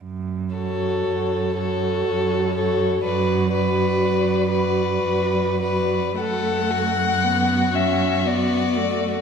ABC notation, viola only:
X:1
M:3/4
L:1/8
Q:1/4=59
K:F#m
V:1 name="Viola"
z F2 F2 F | F F2 F2 F | A,2 B, C B, A, |]